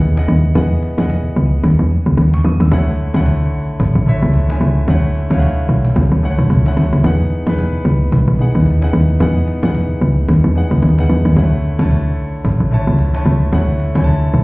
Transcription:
Already playing: log drum bass D#2, grand piano E3 B3 G#4 D#5 F#5 G5 G#5
0.01 cajon bass
0.16 grand piano E3 B3 G#4 D#5 F#5, cajon slap
0.28 log drum bass D#2, cajon slap
0.44 cajon slap
0.54 log drum bass E2, grand piano E3 B3 G#4 D#5 F#5, cajon bass
0.71 cajon slap
0.83 cajon slap
0.97 log drum bass E2, grand piano E3 B3 G#4 D#5 F#5, cajon slap
1.10 cajon bass
1.25 cajon slap
1.36 log drum bass C#2, cajon slap
1.52 cajon slap
1.64 log drum bass D#2, cajon bass
1.79 log drum bass E2, cajon slap
1.91 cajon slap
2.06 log drum bass C#2, cajon slap
2.17 log drum bass D#2, cajon bass
2.34 grand piano C#6, cajon slap
2.44 log drum bass E2, grand piano D#6, cajon slap
2.60 log drum bass D#2, grand piano E6, cajon slap
2.70 log drum bass D2, grand piano D3 A3 E4 C#5 F#5, cajon bass
2.87 cajon slap
2.99 cajon slap
3.13 log drum bass D2, grand piano D3 A3 E4 C#5 F#5, cajon slap
3.26 cajon bass
3.41 cajon slap
3.53 log drum bass B1, cajon slap
3.80 log drum bass A1, cajon bass
3.95 log drum bass A1, cajon slap
4.06 grand piano D3 A3 E4 C#5 E5, cajon slap
4.23 log drum bass C#2
4.34 cajon bass
4.49 grand piano D3 A3 E4 C#5 G#5, cajon slap
4.61 log drum bass C#2, cajon slap
4.87 log drum bass D2, grand piano D3 A3 E4 C#5 F#5, cajon bass
5.03 cajon slap
5.15 cajon slap
5.30 log drum bass D2, grand piano D3 A3 E4 C#5 F5, cajon slap
5.39 grand piano F#5, cajon bass
5.58 cajon slap
5.69 log drum bass B1, cajon slap
5.85 cajon slap
5.96 log drum bass C#2, cajon bass
6.12 log drum bass D2, cajon slap
6.22 grand piano D3 A3 E4 C#5 F#5
6.39 log drum bass B1
6.50 log drum bass C#2, cajon bass
6.65 grand piano D3 A3 E4 C#5 F#5, cajon slap
6.77 log drum bass D2, cajon slap
6.93 log drum bass C#2, cajon slap
7.03 log drum bass E2, grand piano E3 B3 D#4 G#4 F#5, cajon bass
7.20 cajon slap
7.31 cajon slap
7.46 log drum bass E2, grand piano E3 B3 D#4 G#4 B4, cajon slap
7.58 cajon bass
7.74 cajon slap
7.85 log drum bass C#2, cajon slap
8.01 cajon slap
8.12 log drum bass B1, cajon bass
8.28 log drum bass B1, cajon slap
8.39 grand piano E3 B3 D#4 G#4 F#5, cajon slap
8.55 log drum bass D#2, cajon slap
8.66 cajon bass
8.81 grand piano E3 B3 D#4 G#4 F#5, cajon slap
8.93 log drum bass D#2, cajon slap
9.09 cajon slap
9.19 log drum bass E2, grand piano E3 B3 D#4 G#4 F#5, cajon bass
9.36 cajon slap
9.48 cajon slap
9.62 log drum bass E2, grand piano E3 B3 D#4 G#4 F#5, cajon slap
9.75 cajon bass
9.90 cajon slap
10.01 log drum bass C#2, cajon slap
10.17 cajon slap
10.28 log drum bass D#2, cajon bass
10.44 log drum bass E2, cajon slap
10.55 grand piano E3 B3 D#4 G#4 F#5
10.71 log drum bass C#2
10.82 log drum bass D#2, cajon bass
10.97 grand piano E3 B3 D#4 G#4 F#5, cajon slap
11.09 log drum bass E2, cajon slap
11.25 log drum bass D#2, cajon slap
11.36 log drum bass D2, grand piano D3 A3 E4 C#5 F#5, cajon bass
11.52 cajon slap
11.63 cajon slap
11.78 log drum bass D2, grand piano D3 A3 E4 C#5 A5, cajon slap
11.91 cajon bass
12.06 cajon slap
12.17 log drum bass B1, cajon slap
12.45 log drum bass A1, cajon bass
12.60 log drum bass A1, cajon slap
12.71 grand piano D3 A3 E4 C#5 A5, cajon slap
12.87 log drum bass C#2
12.99 cajon bass
13.13 grand piano D3 A3 E4 C#5 A5, cajon slap
13.25 log drum bass C#2, cajon slap
13.52 log drum bass D2, grand piano D3 A3 E4 C#5 F#5, cajon bass
13.68 cajon slap
13.80 cajon slap
13.94 log drum bass D2, grand piano D3 A3 E4 C#5 G#5, cajon slap
14.04 grand piano A5, cajon bass
14.22 cajon slap
14.34 log drum bass B1

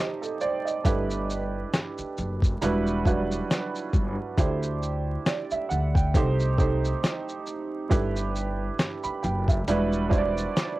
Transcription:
Already playing: upright piano A3 C4 D#4 C5 D5 G5 A5
0.00 upright piano G4 D#5
0.22 upright piano A4, shaker
0.41 upright piano C5 D5, shaker
0.65 upright piano D#5, shaker
0.84 upright bass G1, upright piano A3 D4 E4 G4 B4, kick, closed hi-hat, shaker
1.11 shaker
1.30 shaker
1.74 snare, closed hi-hat, shaker
1.98 muted upright bass stroke, shaker
2.17 upright bass F#1, shaker
2.42 kick, shaker
2.62 upright bass E1, upright piano G3 D4 E4 F#4 B4, closed hi-hat, shaker
2.87 shaker
3.05 upright piano F#3 D4 E4 F#4 B4, kick, shaker
3.11 upright piano G3
3.32 shaker
3.51 snare, closed hi-hat, shaker
3.75 shaker
3.93 upright bass G1, kick, shaker
4.37 upright bass D2, upright piano A3 D4 E4 G4 C5, kick, closed hi-hat, shaker
4.63 shaker
4.83 shaker
5.26 upright piano D5, snare, closed hi-hat, shaker
5.51 upright piano E5, muted upright bass stroke, shaker
5.69 upright bass D2, upright piano F#5, shaker
5.94 upright piano G5, kick, shaker
6.14 upright bass C2, upright piano A3 C4 D#4 G4 C5, kick, closed hi-hat, shaker
6.40 shaker
6.57 upright piano A3 C4 D#4 G4 C5, kick, shaker
6.85 shaker
7.04 snare, closed hi-hat, shaker
7.29 shaker
7.46 shaker
7.88 upright bass G1, upright piano A3 D4 E4 G4 B4, kick, closed hi-hat, shaker
8.16 shaker
8.36 shaker
8.79 snare, closed hi-hat, shaker
9.04 upright piano B5, muted upright bass stroke, shaker
9.23 upright bass F#1, upright piano G5, shaker
9.48 upright piano E5, kick, shaker
9.68 upright bass E1, upright piano G3 D4 E4 F#4 B4, closed hi-hat, shaker
9.93 shaker
10.09 upright piano G3 D4 E4 F#4 C5, kick, shaker
10.18 upright piano D5
10.38 shaker
10.57 snare, closed hi-hat, shaker

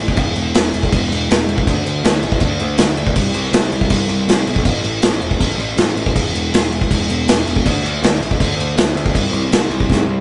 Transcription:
0.00 picked electric bass A1
0.08 kick
0.17 picked electric bass E1, kick, crash
0.36 picked electric bass E1, crash
0.54 picked electric bass E1, snare, crash
0.73 picked electric bass E1, crash
0.83 kick
0.92 picked electric bass E1, kick, crash
1.11 picked electric bass E1, crash
1.29 picked electric bass E1, snare, crash
1.47 picked electric bass E1, crash
1.58 kick
1.67 picked electric bass D2, kick, crash
1.85 picked electric bass D2, crash
2.04 picked electric bass D2, snare, crash
2.23 picked electric bass A1, crash
2.32 kick
2.40 picked electric bass D2, kick, crash
2.59 picked electric bass D2, crash
2.78 picked electric bass D2, snare, crash
2.97 picked electric bass D2, crash
3.07 kick
3.16 picked electric bass C2, kick, crash
3.34 picked electric bass C2, crash
3.52 picked electric bass C2, snare, crash
3.72 picked electric bass C2, crash
3.81 kick
3.90 picked electric bass C2, kick, crash
4.09 picked electric bass C2, crash
4.27 picked electric bass C2, snare, crash
4.47 picked electric bass B1, crash
4.56 kick
4.65 picked electric bass A1, kick, crash
4.84 picked electric bass A1, crash
5.02 picked electric bass A1, snare, crash
5.21 picked electric bass E1, crash
5.31 kick
5.40 picked electric bass A1, kick, crash
5.58 picked electric bass A1, crash
5.77 picked electric bass A1, snare, crash
5.96 picked electric bass A1, crash
6.06 kick
6.15 picked electric bass E1, kick, crash
6.33 picked electric bass E1, crash
6.52 picked electric bass E1, snare, crash
6.72 picked electric bass E1, crash
6.81 kick
6.91 picked electric bass E1, kick, crash
7.09 picked electric bass E1, crash
7.27 picked electric bass E1, snare, crash
7.46 picked electric bass E1, crash
7.56 kick
7.65 picked electric bass D2, kick, crash
7.84 picked electric bass D2, crash
8.03 picked electric bass D2, snare, crash
8.20 picked electric bass A1, crash
8.31 kick
8.40 picked electric bass D2, kick, crash
8.57 picked electric bass D2, crash
8.77 picked electric bass D2, snare, crash
8.95 picked electric bass D2, crash
9.06 kick
9.15 picked electric bass C2, kick, crash
9.33 picked electric bass C2, crash
9.51 picked electric bass C2, snare, crash
9.69 picked electric bass C2, crash
9.80 kick
9.89 picked electric bass C2, kick, snare
10.07 picked electric bass C2

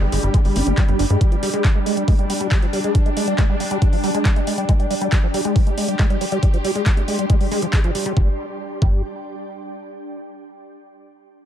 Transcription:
Already playing: synth drone G3 G4, ambient pad D4 G4 D5 B5
0.01 analog synth bass G1, acid bass G#3
0.12 analog synth bass G1, acid bass G#3, open hi-hat
0.23 analog synth bass G1, acid bass G3, closed hi-hat
0.34 acid bass G#3, kick, closed hi-hat
0.45 analog synth bass G1, acid bass G3, open hi-hat
0.56 analog synth bass G1, acid bass D4, open hi-hat
0.67 analog synth bass G1, acid bass G#3, closed hi-hat
0.78 acid bass G3, kick, clap, closed hi-hat
0.88 analog synth bass G1, acid bass G3, closed hi-hat
0.99 analog synth bass G1, acid bass D4, open hi-hat
1.10 analog synth bass G2, acid bass G#3, closed hi-hat
1.21 acid bass G3, synth drone D4, kick, closed hi-hat
1.32 acid bass F3, closed hi-hat
1.43 acid bass G3, open hi-hat
1.54 acid bass G#3, closed hi-hat
1.64 acid bass G3, kick, clap, closed hi-hat
1.75 acid bass G#3, ambient pad G5
1.86 acid bass G#3, open hi-hat
1.97 acid bass G3, closed hi-hat
2.08 acid bass G#3, kick, open hi-hat
2.19 acid bass G3, closed hi-hat
2.30 acid bass G3, open hi-hat
2.41 acid bass G3, closed hi-hat
2.51 acid bass G3, kick, clap, closed hi-hat
2.62 acid bass F3, closed hi-hat
2.73 acid bass G3, open hi-hat
2.84 acid bass G#3, closed hi-hat
2.95 acid bass G3, kick, closed hi-hat
3.06 acid bass G#3, closed hi-hat
3.17 acid bass G#3, open hi-hat
3.28 acid bass G3, closed hi-hat
3.38 acid bass G#3, kick, clap, closed hi-hat
3.49 acid bass G3
3.60 acid bass G3, open hi-hat
3.71 acid bass G3, closed hi-hat
3.82 acid bass G3, kick, closed hi-hat
3.93 acid bass F3, open hi-hat
4.04 acid bass G3, open hi-hat
4.14 acid bass G#3, closed hi-hat
4.25 acid bass G3, kick, clap, closed hi-hat
4.36 acid bass G#3, closed hi-hat
4.47 acid bass G#3, open hi-hat
4.58 acid bass G3, closed hi-hat
4.69 acid bass G#3, synth drone G4, kick, closed hi-hat
4.80 acid bass G3, closed hi-hat
4.91 acid bass G3, open hi-hat
5.01 acid bass G3, closed hi-hat
5.12 acid bass G3, kick, clap, closed hi-hat
5.23 acid bass F3, ambient pad C6
5.34 acid bass G3, open hi-hat
5.45 acid bass G#3, closed hi-hat
5.56 acid bass G3, kick, open hi-hat
5.67 acid bass G#3, closed hi-hat
5.78 acid bass G#3, open hi-hat
5.88 acid bass G3, closed hi-hat
5.99 acid bass G#3, kick, clap, closed hi-hat
6.10 acid bass G3, closed hi-hat
6.21 acid bass G3, open hi-hat
6.32 acid bass G3, closed hi-hat
6.43 acid bass G3, kick, closed hi-hat
6.54 acid bass F3, closed hi-hat
6.64 acid bass G3, open hi-hat
6.75 acid bass G#3, closed hi-hat
6.86 acid bass G3, kick, clap, closed hi-hat
6.97 acid bass G#3, closed hi-hat
7.08 acid bass G#3, open hi-hat
7.19 acid bass G3, closed hi-hat
7.30 acid bass G#3, kick, closed hi-hat
7.41 acid bass G3, open hi-hat
7.51 acid bass G#3, open hi-hat
7.62 acid bass F3, closed hi-hat
7.73 acid bass G#3, kick, clap, closed hi-hat
7.84 acid bass F3, closed hi-hat
7.95 acid bass G3, open hi-hat
8.06 acid bass G3, closed hi-hat
8.17 analog synth bass G1, acid bass G3, ambient pad D4, kick
8.23 ambient pad G4
8.30 ambient pad D5
8.36 ambient pad G5
8.82 analog synth bass G1, acid bass G3, kick

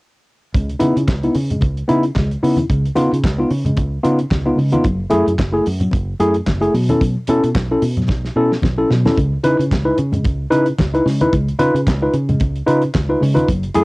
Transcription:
0.54 fingered electric bass C#2, tine electric piano C#3 G#3, kick, closed hi-hat, muted conga
0.69 closed hi-hat
0.80 fingered electric bass C#3, tine electric piano B3 D#4 E4, closed hi-hat, muted conga
0.96 fingered electric bass C#3, tine electric piano D#4 E4, closed hi-hat
1.08 fingered electric bass C#2, kick, snare, clap, high conga
1.23 tine electric piano B3 D#4 E4, closed hi-hat
1.35 fingered electric bass C#3, open hi-hat, muted conga
1.50 tine electric piano C#3 G#3, closed hi-hat, low conga
1.61 fingered electric bass C#2, kick, closed hi-hat, muted conga
1.77 closed hi-hat
1.88 fingered electric bass C#3, tine electric piano B3 D#4 E4, closed hi-hat
2.03 closed hi-hat
2.15 fingered electric bass C#2, tine electric piano C#3 G#3, kick, snare, clap, high conga
2.31 closed hi-hat
2.43 fingered electric bass C#3, tine electric piano B3 D#4 E4, open hi-hat
2.57 tine electric piano D#4 E4, closed hi-hat, high conga
2.70 fingered electric bass C#2, tine electric piano C#3 G#3, kick, closed hi-hat, muted conga
2.85 closed hi-hat
2.95 fingered electric bass C#3, tine electric piano B3 D#4 F4, closed hi-hat, muted conga
3.12 fingered electric bass C#3, tine electric piano D#4 F4, closed hi-hat
3.24 fingered electric bass C#2, kick, snare, clap, high conga
3.38 tine electric piano B3 D#4 F4
3.51 fingered electric bass C#3, open hi-hat
3.65 tine electric piano C#3 G#3, closed hi-hat, low conga
3.77 fingered electric bass C#2, kick, closed hi-hat, muted conga
4.03 fingered electric bass C#3, tine electric piano B3 D#4 F4, closed hi-hat
4.19 closed hi-hat
4.31 fingered electric bass C#2, kick, snare, clap, high conga
4.46 tine electric piano B3 D#4 F4
4.56 tine electric piano C#3 G#3, fingered electric bass C#3, open hi-hat
4.72 tine electric piano B3 D#4 F4, closed hi-hat, high conga
4.83 fingered electric bass F#1, tine electric piano F#3, kick, closed hi-hat, muted conga
5.10 fingered electric bass F#2, tine electric piano A3 E4 G#4, closed hi-hat, muted conga
5.26 fingered electric bass F#2, tine electric piano E4 G#4, closed hi-hat
5.39 fingered electric bass F#1, kick, snare, clap, high conga
5.52 tine electric piano A3 E4 G#4
5.66 fingered electric bass F#2, open hi-hat
5.80 tine electric piano F#3, closed hi-hat, low conga
5.91 fingered electric bass F#1, kick, closed hi-hat, muted conga
6.20 fingered electric bass F#2, tine electric piano A3 E4 G#4, closed hi-hat
6.34 closed hi-hat
6.47 fingered electric bass F#1, kick, snare, clap, high conga
6.61 tine electric piano A3 E4 G#4, closed hi-hat
6.73 tine electric piano B2 F#3, fingered electric bass B2, open hi-hat
6.89 tine electric piano C#4 E4 A4, closed hi-hat, high conga
7.01 tine electric piano B2 F#3, kick, closed hi-hat, muted conga
7.27 fingered electric bass B2, tine electric piano C#4 E4 A4, closed hi-hat, muted conga
7.43 fingered electric bass B2, tine electric piano E4 A4, closed hi-hat
7.55 fingered electric bass B1, kick, snare, clap, high conga
7.71 tine electric piano C#4 E4 A4
7.82 fingered electric bass B2, open hi-hat, muted conga
7.97 tine electric piano B2 F#3, closed hi-hat, low conga
8.08 fingered electric bass B1, kick, snare, muted conga
8.25 snare
8.36 fingered electric bass B2, tine electric piano C#4 E4 A4
8.52 snare
8.62 fingered electric bass B1, kick, snare, high conga
8.78 tine electric piano C#4 E4 A4
8.90 tine electric piano B2 F#3, fingered electric bass B2, snare
9.05 tine electric piano C#4 E4 A4, snare, high conga
9.17 fingered electric bass C#2, tine electric piano C#3 G#3, kick, closed hi-hat, muted conga
9.44 fingered electric bass C#3, tine electric piano D#4 E4 B4, closed hi-hat, muted conga
9.57 fingered electric bass C#3, tine electric piano E4 B4, closed hi-hat
9.71 fingered electric bass C#2, kick, snare, clap, high conga
9.85 tine electric piano D#4 E4 B4
9.98 fingered electric bass C#3, closed hi-hat, muted conga
10.12 tine electric piano C#3 G#3, closed hi-hat, low conga
10.24 fingered electric bass C#2, kick, closed hi-hat, muted conga
10.51 fingered electric bass C#3, tine electric piano D#4 E4 B4, closed hi-hat
10.66 closed hi-hat
10.78 fingered electric bass C#2, kick, snare, clap, high conga
10.94 tine electric piano D#4 E4 B4, closed hi-hat
11.05 fingered electric bass C#3, tine electric piano C#3 G#3, snare, open hi-hat
11.21 tine electric piano D#4 E4 B4, closed hi-hat, high conga
11.33 fingered electric bass C#2, tine electric piano C#3 G#3, kick, closed hi-hat, muted conga
11.48 closed hi-hat
11.59 fingered electric bass C#3, tine electric piano D#4 F4 B4, closed hi-hat, muted conga
11.74 fingered electric bass C#3, tine electric piano F4 B4, closed hi-hat
11.87 fingered electric bass C#2, kick, snare, clap, high conga
12.02 tine electric piano D#4 F4 B4
12.13 fingered electric bass C#3, closed hi-hat
12.29 tine electric piano C#3 G#3, closed hi-hat, low conga
12.40 fingered electric bass C#2, kick, closed hi-hat, muted conga
12.55 closed hi-hat
12.66 fingered electric bass C#3, tine electric piano D#4 F4 B4, closed hi-hat
12.81 closed hi-hat
12.95 fingered electric bass C#2, kick, snare, clap, high conga
13.09 tine electric piano D#4 F4 B4
13.21 tine electric piano C#3 G#3, fingered electric bass C#3, open hi-hat
13.34 tine electric piano D#4 F4 B4, closed hi-hat, high conga
13.48 fingered electric bass F#1, tine electric piano F#3, kick, closed hi-hat, muted conga
13.63 closed hi-hat
13.74 fingered electric bass F#2, tine electric piano A3 E4 G#4, closed hi-hat, muted conga

